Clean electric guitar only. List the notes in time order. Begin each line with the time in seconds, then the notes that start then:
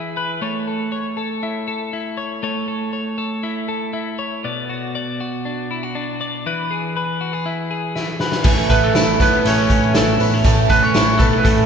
Already playing: E3 E4 G#4 B4
0.17 B4
0.42 A3 C#5
0.67 A4
0.92 C#5
1.17 A4
1.43 E4
1.68 A4
1.93 E4
2.17 C#5
2.43 A3 C#5
2.68 A4
2.93 C#5
3.18 A4
3.43 E4
3.68 A4
3.93 E4
4.19 C#5
4.44 B2 D5
4.70 F#4
4.95 D5
5.21 F#4
5.45 D4
5.71 E4
5.83 F#4
5.95 D4
6.21 D5
6.46 E3 B4
6.71 G#4
6.97 B4
7.21 F#4
7.33 G#4
7.46 E4
7.71 G#4
7.96 E4
8.21 B4
8.45 A2
8.70 A3
8.95 E4
9.20 C#4
9.46 A3
9.71 C#4
9.96 E4
10.21 B3
10.34 C#4
10.46 A2
10.70 A3
10.95 E4
11.20 B3
11.33 C#4
11.46 A3